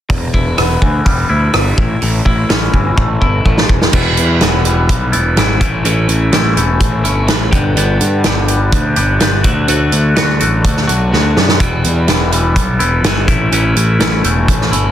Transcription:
0.10 E1 E2, kick, open hi-hat
0.34 E1 E4, kick
0.57 E1 B3, cross-stick, open hi-hat
0.82 D2 E3, kick
1.05 E1 G3, kick, open hi-hat
1.30 D2 E4
1.53 G1 G3, cross-stick, open hi-hat
1.78 A1 A2, kick
2.02 A1 A2, open hi-hat
2.25 A1 E4, kick
2.49 A1 C#4, snare, open hi-hat
2.73 G1 E3, kick
2.96 A1 A3, kick
3.21 G1 E4, kick
3.45 A1 A3, kick
3.58 snare
3.69 E1 E2, kick
3.82 snare
3.92 E1 E2 B2 E3 G3 B3 E4, kick, crash
4.17 E2, closed hi-hat
4.40 E1 E2 B2 E3 G3 B3 E4, snare, closed hi-hat
4.64 E3 G3 B3 E4, closed hi-hat
4.89 B1, kick, closed hi-hat
5.12 E1 E3 G3 B3 E4, closed hi-hat
5.36 G#1 E3 G3 B3 E4, snare, closed hi-hat
5.60 A1 A2 E3 A3 C#4 E4, kick, closed hi-hat
5.84 A1 A2 E3 A3 C#4 E4, closed hi-hat
6.09 A1, closed hi-hat
6.31 A1 A2 E3 A3 C#4 E4, snare, closed hi-hat
6.55 E1 A3 C#4 E4, closed hi-hat
6.81 A1, kick, closed hi-hat
7.04 G1 A3 C#4 E4, closed hi-hat
7.27 A1 E3 A3 C#4 E4, snare, closed hi-hat
7.51 G1 G2 D3 G3 B3 D4 G4, kick, closed hi-hat
7.76 G1 G2 D3 G3 B3 D4 G4, closed hi-hat
8.01 G2, closed hi-hat
8.24 G1 G2 D3 G3 B3 D4 G4, snare, closed hi-hat
8.48 G3 B3 D4 G4, closed hi-hat
8.72 D2, kick, closed hi-hat
8.96 G1 G3 B3 D4 G4, closed hi-hat
9.19 G1 G3 B3 D4 G4, snare, closed hi-hat
9.43 D2 D3 A3 D4 F#4, kick, closed hi-hat
9.68 D2 D3 A3 D4 F#4, closed hi-hat
9.92 D2, closed hi-hat
10.15 D2 D3 A3 D4 F#4, snare, closed hi-hat
10.40 A1 A3 D4 F#4, closed hi-hat
10.64 D2, kick, closed hi-hat
10.77 snare
10.87 B1 A3 D4 F#4, closed hi-hat
11.11 D2 D3 A3 D4 F#4, snare
11.37 F#2, snare
11.49 snare
11.59 E1 E2 B2 E3 G3 B3 E4, kick, closed hi-hat
11.84 E2, closed hi-hat
12.07 E1 E2 B2 E3 G3 B3 E4, snare, closed hi-hat
12.31 E3 G3 B3 E4, closed hi-hat
12.56 B1, kick, closed hi-hat
12.79 E1 E3 G3 B3 E4, closed hi-hat
13.03 G1 E3 G3 B3 E4, snare, closed hi-hat
13.28 A1 A2 E3 A3 C#4 E4, kick, closed hi-hat
13.51 A1 A2 E3 A3 C#4 E4, closed hi-hat
13.76 A1, closed hi-hat
13.99 A1 A2 E3 A3 C#4 E4, snare, closed hi-hat
14.23 E1 A3 C#4 E4, closed hi-hat
14.48 A1, kick, closed hi-hat
14.61 snare
14.72 G1 A3 C#4 E4, closed hi-hat

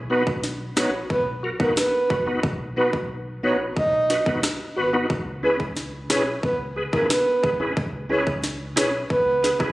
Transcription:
Already playing: B1
0.10 B3 D#4 F#4 B4
0.27 kick
0.43 snare
0.77 A#1 B3 D#4 F#4 B4 C#5, cross-stick, snare
1.10 B1 B4, kick
1.43 F#4 A#4
1.60 B1 B3 D#4 F#4 A#4 B4, kick
1.77 B4, cross-stick, snare
2.10 F#1 F#4 B4, kick
2.26 B3 D#4 F#4 B4
2.43 B1, kick
2.77 B3 D#4 F#4 B4
2.93 kick
3.43 A#1 B3 D#4 F#4 B4 C#5
3.77 B1 D#5, kick
4.10 F#4 B4, snare
4.26 B1 B3 D#4 F#4 B4, kick
4.43 cross-stick, snare
4.76 G#1 F#4 B4
4.93 B3 D#4 F#4 B4
5.10 C#2, kick
5.43 C#4 E4 G#4 B4
5.60 kick
5.77 snare
6.10 B1 C#4 E4 G#4 B4 C#5, cross-stick, snare
6.43 C#2 B4, kick
6.76 G#4 B4
6.93 C#2 C#4 E4 G#4 A#4 B4, kick
7.10 B4, cross-stick, snare
7.43 G#1 G#4 B4, kick
7.59 C#4 E4 G#4 B4
7.77 C#2, kick
8.10 C#4 E4 G#4 B4 C#5
8.27 kick
8.44 snare
8.76 B1 C#4 E4 G#4 B4 C#5, cross-stick, snare
9.10 C#2 B4, kick
9.43 G#4 B4, snare
9.59 C#2 C#4 E4 G#4 B4, kick, cross-stick

